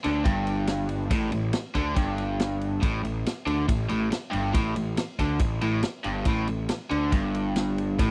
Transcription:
0.04 0.25 D2 medium
0.04 0.25 D3 loud
0.04 ride medium
0.24 1.08 G1 medium
0.24 1.10 G2 loud
0.24 kick loud
0.24 ride medium
0.47 ride medium
0.67 snare loud
0.67 ride medium
0.89 ride medium
1.11 1.31 A1 medium
1.11 1.31 A2 loud
1.11 kick loud
1.11 ride medium
1.32 1.53 A1 medium
1.32 1.50 A2 medium
1.32 ride medium
1.53 snare loud
1.53 ride medium
1.75 1.95 D2 medium
1.75 1.96 D3 medium
1.75 kick medium
1.75 ride medium
1.95 2.79 G1 medium
1.95 2.81 G2 loud
1.95 kick loud
1.95 ride medium
2.18 ride medium
2.40 snare loud
2.40 ride medium
2.61 ride medium
2.81 3.03 A1 medium
2.81 3.02 A2 loud
2.81 kick loud
2.81 ride medium
3.03 3.24 A1 medium
3.03 3.21 A2 medium
3.03 ride medium
3.26 snare loud
3.26 ride medium
3.47 3.67 D2 medium
3.47 3.68 D3 medium
3.47 ride medium
3.68 3.89 A1 medium
3.68 3.86 A2 medium
3.68 kick loud
3.68 ride medium
3.89 4.11 A1 medium
3.89 4.10 A2 medium
3.89 ride medium
4.11 muted overdriven electric guitar stroke medium
4.11 muted picked electric bass stroke soft
4.11 snare loud
4.11 ride medium
4.31 4.54 G1 medium
4.31 4.53 G2 loud
4.31 ride medium
4.53 4.75 A1 medium
4.53 4.75 A2 loud
4.53 kick loud
4.53 ride medium
4.76 4.97 A1 medium
4.76 4.93 A2 medium
4.76 ride medium
4.97 snare loud
4.97 ride medium
5.19 5.39 D2 medium
5.19 5.40 D3 medium
5.19 kick medium
5.19 ride medium
5.39 5.60 A1 medium
5.39 5.58 A2 medium
5.39 kick loud
5.39 ride medium
5.61 5.83 A1 medium
5.61 5.83 A2 medium
5.61 ride medium
5.83 muted overdriven electric guitar stroke medium
5.83 muted picked electric bass stroke soft
5.83 snare loud
5.83 ride medium
6.04 6.25 G1 medium
6.04 6.26 G2 loud
6.04 ride medium
6.25 6.46 A1 medium
6.25 6.47 A2 loud
6.25 kick loud
6.25 ride medium
6.47 6.69 A1 medium
6.47 6.66 A2 medium
6.47 ride medium
6.69 snare loud
6.69 ride medium
6.90 7.12 D2 medium
6.90 7.12 D3 loud
6.90 ride medium
7.11 7.95 G1 medium
7.11 7.98 G2 loud
7.11 kick loud
7.11 ride medium
7.34 ride medium
7.56 snare loud
7.56 ride medium
7.78 ride medium
7.99 8.11 A1 medium
7.99 8.11 A2 loud
7.99 kick loud
7.99 ride medium

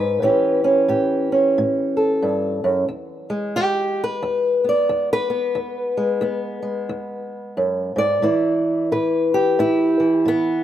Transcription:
0.00 0.22 G#2 medium
0.00 0.23 G#3 soft
0.00 1.96 B4 medium
0.22 0.84 A2 medium
0.22 5.58 E3 soft
0.22 0.63 C#4 soft
0.22 0.88 G4 soft
0.64 1.30 C#4 soft
0.88 1.50 A2 medium
0.88 2.87 G4 medium
1.32 2.88 C#4 soft
1.58 2.19 A2 medium
1.97 2.87 A4 soft
2.22 2.63 G2 medium
2.64 2.88 F#2 medium
2.88 3.51 E2 medium
3.30 5.96 G#3 medium
3.56 4.18 E2 medium
3.56 4.01 G4 medium
4.04 4.68 B4 medium
4.22 4.85 E2 medium
4.64 5.29 B3 soft
4.69 5.12 D5 medium
4.89 5.52 E2 medium
5.13 7.80 B4 loud
5.30 6.21 B3 soft
5.55 6.18 E2 medium
5.97 6.61 G#3 soft
6.21 6.84 E2 medium
6.21 8.23 B3 medium
6.62 8.24 G#3 soft
6.89 7.52 E2 medium
7.57 7.95 F#2 medium
7.96 8.22 G#2 medium
7.96 8.92 D5 medium
8.22 8.85 A2 medium
8.22 9.99 E3 medium
8.22 9.34 E4 soft
8.92 9.54 A2 medium
8.92 9.59 B4 medium
9.34 10.27 G4 medium
9.59 10.21 A2 medium
9.59 10.64 E4 medium
10.00 10.64 E3 soft
10.25 10.64 A2 medium
10.25 10.64 B3 medium

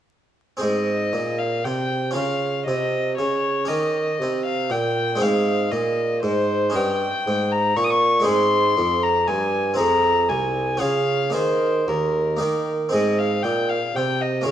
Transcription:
0.57 2.10 C4 soft
0.57 2.10 G#4 soft
0.57 2.11 C5 soft
0.62 1.09 G#2 soft
0.62 1.16 G#2 soft
0.62 1.40 D#5 medium
1.13 1.61 A#2 soft
1.13 1.64 A#2 soft
1.39 1.66 F5 medium
1.65 2.15 C3 soft
1.65 2.12 C3 soft
1.65 2.15 G5 medium
2.11 3.63 C#4 soft
2.11 3.64 F4 soft
2.11 3.64 A#4 soft
2.15 2.63 C#3 soft
2.15 2.66 C#3 medium
2.15 2.66 F5 medium
2.66 3.17 C3 medium
2.66 3.15 C3 soft
2.66 3.17 D#5 medium
3.18 3.68 C#3 soft
3.18 3.66 C#3 soft
3.18 3.69 C#5 medium
3.65 5.16 C#4 soft
3.65 5.16 G4 soft
3.65 5.17 A#4 soft
3.65 4.45 D#5 medium
3.69 4.21 D#3 medium
3.69 4.16 D#3 soft
4.20 4.73 C3 medium
4.20 4.68 C3 soft
4.45 4.73 F5 medium
4.70 5.17 A#2 soft
4.70 5.21 A#2 soft
4.70 5.23 G5 medium
5.15 5.68 G#3 soft
5.15 5.68 C4 soft
5.15 5.69 D#4 soft
5.20 5.71 G#2 medium
5.20 5.68 G#2 soft
5.20 6.70 G#4 soft
5.20 5.72 F5 medium
5.71 6.19 A#2 soft
5.71 6.22 A#2 medium
5.71 6.22 D#5 medium
6.23 6.74 G#2 medium
6.23 6.71 G#2 soft
6.23 6.78 C5 medium
6.70 7.22 C#4 soft
6.70 8.20 D#4 soft
6.70 8.21 A#4 soft
6.74 7.05 G2 soft
6.74 7.08 G2 medium
6.74 7.53 G5 medium
7.27 7.73 G#2 medium
7.27 7.73 G#2 soft
7.52 7.78 A#5 medium
7.76 8.25 A#2 medium
7.76 8.23 A#2 soft
7.76 7.86 C#6 medium
7.84 7.92 D#6 medium
7.90 8.26 C#6 medium
8.20 8.72 G#3 soft
8.20 8.73 C4 soft
8.20 8.73 D#4 soft
8.25 8.73 G#2 soft
8.25 8.76 G#2 medium
8.25 9.73 G#4 soft
8.25 9.04 C6 medium
8.77 9.24 F2 soft
8.77 9.27 F2 medium
9.03 9.29 A#5 medium
9.27 9.74 G2 soft
9.27 9.78 G2 medium
9.27 9.78 G#5 medium
9.74 10.76 C4 soft
9.74 10.77 F4 soft
9.74 10.78 G#4 soft
9.78 10.25 F2 soft
9.78 10.31 F2 medium
9.78 10.30 A#5 medium
10.29 10.80 C2 medium
10.29 10.78 C2 soft
10.29 10.82 G#5 medium
10.77 11.33 C#3 medium
10.77 11.31 C#4 soft
10.77 11.31 F4 soft
10.77 11.31 G#4 soft
10.77 11.34 F5 medium
10.82 11.31 C#3 soft
11.30 12.35 A#3 soft
11.30 12.36 D#4 soft
11.30 12.36 G#4 soft
11.34 11.86 D#3 medium
11.34 11.83 D#3 soft
11.34 11.90 C5 medium
11.87 12.42 D#2 medium
11.87 12.37 D#2 soft
11.87 12.67 A#4 medium
12.37 12.93 D#3 medium
12.37 12.90 A#3 soft
12.37 12.89 D#4 soft
12.37 12.91 G4 soft
12.41 12.90 D#3 soft
12.89 14.41 C4 soft
12.89 14.42 D#4 soft
12.89 14.43 G#4 soft
12.93 13.41 G#2 medium
12.93 13.41 G#2 soft
12.93 13.20 D#5 medium
13.19 13.45 F5 medium
13.43 13.91 A#2 soft
13.43 13.79 A#2 medium
13.43 13.71 G5 medium
13.69 13.98 F5 medium
13.94 14.45 C3 medium
13.94 14.44 C3 soft
13.94 14.23 G5 medium
14.21 14.46 D#5 medium
14.41 14.51 A#3 soft
14.41 14.51 C#4 soft
14.41 14.51 F4 soft
14.46 14.51 C#3 soft
14.46 14.51 C#3 medium
14.46 14.51 F5 medium

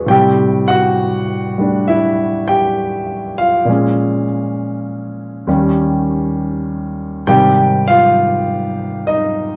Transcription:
0.00 0.11 D4 medium
0.00 0.11 F#4 soft
0.00 0.10 G#4 soft
0.00 0.17 B4 soft
0.06 3.67 A2 medium
0.06 3.68 C3 medium
0.06 1.57 G3 medium
0.06 0.71 G5 medium
0.11 3.69 C4 medium
0.11 0.66 G4 medium
0.68 1.85 F#4 medium
0.68 1.84 F#5 loud
1.58 3.68 G3 soft
1.58 3.68 A3 soft
1.58 3.69 D4 soft
1.88 2.45 E4 medium
1.88 2.50 E5 medium
2.48 3.35 G4 medium
2.48 3.34 G5 medium
3.38 4.25 F4 medium
3.38 4.24 F5 medium
3.65 5.46 A#2 medium
3.65 5.47 F3 soft
3.65 5.48 G#3 soft
3.70 5.47 C#4 medium
5.47 7.27 D#2 medium
5.47 7.26 D#3 medium
5.47 7.26 G3 medium
5.47 7.28 C#4 medium
7.27 9.56 G#2 soft
7.27 9.56 C3 medium
7.27 9.56 D#3 soft
7.27 9.56 G3 medium
7.27 7.85 G4 medium
7.27 7.89 G5 loud
7.88 9.04 F4 medium
7.88 9.03 F5 medium
9.07 9.56 D#4 medium
9.07 9.56 D#5 medium

